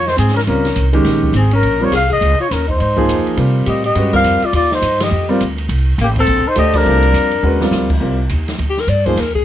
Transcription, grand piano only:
0.47 0.63 G3 medium
0.47 0.63 C4 soft
0.47 0.63 F4 soft
0.47 0.64 A#4 medium
0.93 1.32 D#3 medium
0.93 1.32 G#3 medium
0.93 1.32 C#4 medium
0.93 1.32 G4 medium
1.80 1.91 G3 medium
1.80 1.91 C4 medium
1.80 1.91 F4 medium
1.80 1.92 A#4 medium
2.96 3.35 F3 medium
2.96 3.35 A#3 medium
2.96 3.35 D#4 medium
2.96 3.36 G#4 medium
3.37 3.80 G3 medium
3.37 3.81 C4 medium
3.37 3.81 F4 medium
3.37 3.81 A#4 medium
3.95 4.11 G#3 medium
3.95 4.12 C#4 medium
3.95 4.12 F#4 medium
3.95 4.12 B4 medium
4.13 4.39 G3 medium
4.13 4.39 C4 medium
4.13 4.39 F4 medium
4.13 4.39 A#4 medium
5.29 5.39 G3 medium
5.29 5.39 C4 medium
5.29 5.40 F4 medium
5.29 5.40 A#4 medium
6.56 6.99 A3 medium
6.56 7.00 D4 medium
6.56 7.00 G4 medium
6.56 7.00 C5 medium
6.84 7.28 G3 medium
6.84 7.28 C4 medium
6.84 7.29 F4 medium
6.84 7.29 A#4 medium
7.43 7.60 G#3 medium
7.43 7.60 C#4 medium
7.43 7.60 F#4 medium
7.43 7.60 B4 medium
7.62 7.87 G3 medium
7.62 7.87 C4 medium
7.62 7.87 F4 medium
7.62 7.87 A#4 medium
8.00 8.17 G3 medium
8.00 8.17 C4 medium
8.00 8.17 F4 medium
8.00 8.18 A#4 medium
9.06 9.16 F3 medium
9.06 9.16 A#3 medium
9.06 9.17 D#4 medium
9.06 9.17 G#4 medium

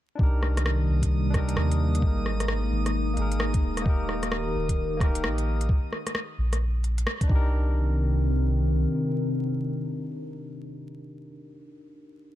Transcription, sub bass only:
0.19 0.87 C2 loud
0.88 1.56 C2 medium
1.57 2.04 D#2 medium
2.02 2.70 G#1 loud
2.71 3.16 G#1 medium
3.17 3.62 G#1 medium
3.64 4.54 D#1 medium
4.55 5.25 D#1 medium
5.24 5.68 A#1 medium
6.38 7.06 A#1 medium
7.30 8.86 C2 medium

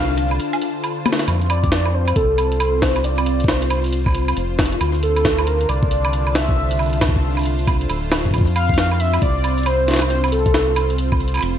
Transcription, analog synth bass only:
0.00 0.40 C2 loud
1.28 2.13 F2 loud
2.16 4.34 C2 medium
4.37 4.78 F1 loud
4.81 5.66 D2 loud
5.69 7.87 C2 loud
7.89 8.31 D1 loud
8.34 9.19 F2 loud
9.22 11.40 C2 medium
11.42 11.59 F1 loud

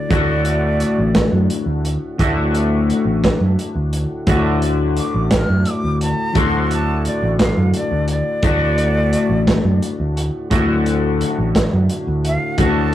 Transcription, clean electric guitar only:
0.00 0.10 D3 medium
0.00 0.11 A3 medium
0.00 0.11 F#4 medium
0.09 2.18 D2 medium
0.09 2.17 A2 medium
0.09 2.20 D3 medium
0.09 2.19 A3 medium
0.09 2.20 F#4 medium
2.18 4.26 D2 medium
2.18 4.26 A2 medium
2.18 4.27 D3 medium
2.18 4.28 A3 medium
2.18 4.29 F#4 medium
4.27 6.33 D2 medium
4.27 6.33 A2 medium
4.27 6.35 D3 loud
4.27 6.36 A3 medium
4.27 6.36 F#4 medium
6.34 8.42 D2 medium
6.34 8.41 A2 medium
6.34 8.43 D3 medium
6.34 8.44 A3 medium
6.34 8.44 F#4 loud
8.42 10.50 D2 medium
8.42 10.49 A2 medium
8.42 10.51 D3 medium
8.42 10.52 A3 medium
8.42 10.52 F#4 medium
10.50 12.57 D2 medium
10.50 12.57 A2 medium
10.50 12.58 D3 medium
10.50 12.59 A3 medium
10.50 12.60 F#4 medium
12.58 12.95 D2 medium
12.58 12.95 A2 medium
12.58 12.95 D3 medium
12.58 12.95 A3 medium
12.58 12.95 F#4 medium

